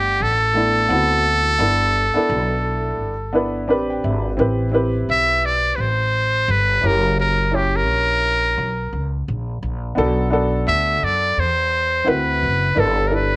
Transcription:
Already playing: G1 A3 B3 D4 G4 F#5
0.20 A1 A4
0.54 A3 B3 D4 E4
0.89 D2 B3 C4 E4 F#4
1.58 G1 B3 D4 E4 A4
2.14 B3 D4 E4 A4, muted upright bass stroke
2.29 B1
2.99 G1
3.33 B3 D4 E4 B4
3.68 A1 C4 D4 G4 B4 B5
3.90 G5
4.04 G#1 E5
4.37 A1 C4 E4 G4 B4
4.72 C4 E4 G4 B4
5.09 B1 E5
5.46 D5
5.76 A1 B4
5.81 C5
6.48 G1 B4
6.81 F#1 C#4 E4 G4 A#4
6.86 A#4
7.20 A#4
7.51 C#4 E4 G4 C#5
7.76 A#4
7.88 A#1
8.58 B1
8.93 C#2
9.28 A#1
9.62 A#1
9.95 B1 B3 D4 F#4 A4
10.30 B3 D4 F#4 A4
10.68 D2 E5
11.03 F#2 D5
11.38 E2 C5
12.04 D2 C4 E4 F#4 B4
12.09 B4
12.43 F#1
12.75 G1 D4 E4 A4 B4
12.79 A4
13.07 D4 E4 A4 A#4
13.12 B4 D5

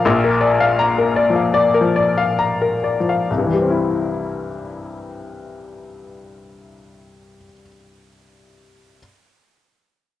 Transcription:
Already playing: F3 F5
0.05 A#1 A#2 D5
0.24 A#4
0.41 D5
0.60 F5
0.79 A#5
0.98 A#4
1.16 D5
1.30 F3
1.36 F5
1.54 D5
1.74 A#4
1.81 F3
1.96 D5
2.18 F5
2.39 A#5
2.62 A#4
2.84 D5
3.00 F3
3.09 F5
3.30 C2
3.38 G2
3.46 E3
3.54 G3
3.62 C4
3.70 E4

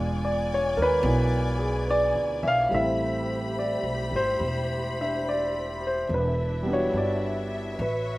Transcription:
Already playing: E1 G#3 B3 D4 F4 D5 G#5
0.25 D5
0.54 C#5
0.77 D#2 A#4
0.82 B4
1.03 B1 B3 E4
1.59 G#4
1.88 B4 D5
2.15 D2 D5
2.43 B1 E5
2.48 F5
2.69 A1 G3 A3 C4 G4 C5 B5
2.74 E4 E5
3.59 D5
3.83 B1
4.11 G#1
4.16 C5
4.40 E1
5.01 D4 E5
5.29 D5
5.87 C5
6.09 E1 D4 E4 E5
6.14 B4
6.62 G3 B3
6.70 D4 F#4 C#5
6.93 G1
6.98 D5
7.77 A1 F#4 B4 C#5
7.82 B4

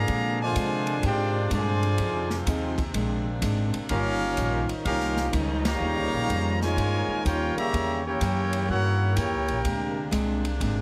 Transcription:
Already playing: D3 F3 A#3 G#4 D5 F5 A#5
0.07 A#2 C3 G#3 A#3 C4 D4, kick, ride
0.42 D3 F3 G#3 F4 C5 D5 G#5
0.55 A#2 C3 G#3 C4 D4, kick, hi-hat pedal, ride
0.87 ride
1.03 G#2 A#2 G#3 C4 D4 F4 G4 G5, kick, ride
1.07 C5 D5
1.50 G2 A#2 G#3 C4 D4 G#4, kick, hi-hat pedal, ride
1.54 D3 F3 F4 C5 D5 G#5
1.83 ride
1.98 F2 F3 C4 D#4 F4 G#4, kick, ride
2.30 snare
2.46 D#2 F3 C4 D#4 G#4, kick, hi-hat pedal, ride
2.78 kick, ride
2.94 A#1 A#2 G#3 A#3 C4 D4, kick, ride
3.42 G#1 A#2 G#3 C4 D4, kick, hi-hat pedal, ride
3.73 muted upright bass stroke, ride
3.89 G1 D#3 F3 G3 A#3 C#4 D#4 F4 G4 A#4 F5, kick, ride
4.37 A#1 D#3 G3 C#4 F4, kick, hi-hat pedal, ride
4.69 muted upright bass stroke, ride
4.85 C2 D#3 G3 A#3 C#4 F4 G4 A#4 F5, kick, ride
5.00 snare
5.17 snare
5.33 C#2 D#3 G3 C#4 F4, kick, hi-hat pedal, ride
5.65 C#3 G3 A#3 G4 C#5 F5 A#5, snare, ride
5.80 D#2 D#3 G3 C#4 F4
5.96 C#2
6.12 A#1
6.29 F2 D#3 G3 C#4 F4, kick, hi-hat pedal, ride
6.61 A#2 C#3 G#3 F4 A#4 C#5 G#5, snare
6.76 G2 D#3 G3 C#4 F4, kick, ride
7.07 muted upright bass stroke
7.24 D#2 D#3 G3 A#3 C#4 F4 G4 A#4 C#5 G5, kick, hi-hat pedal, ride
7.55 C#3 G3 A#3 G4 C#5 E5 A#5, muted upright bass stroke, ride
7.73 E2 E3 A#3 C#4 G4, kick, ride
7.77 C#3
8.04 A#3 C#4 E4 G4 A#4 C#5 G5
8.21 F#2 E3 A#3 C#4 G4, kick, hi-hat pedal, ride
8.53 ride
8.68 G2 E3 A#3 C#4 E4 F#4 G4 A#4 C#5 F#5, kick
9.16 E2 E3 A#3 C#4 E4 G4 A#4 C#5 G5, kick, hi-hat pedal, ride
9.33 C#2
9.48 A#1, ride
9.64 D2 A#2 C3 G#3 C4 D4, kick, ride
10.11 C2 A#2 G#3 C4 D4, kick, hi-hat pedal, ride
10.45 ride
10.60 G#1 A#2 G#3 C4 D4, kick, ride

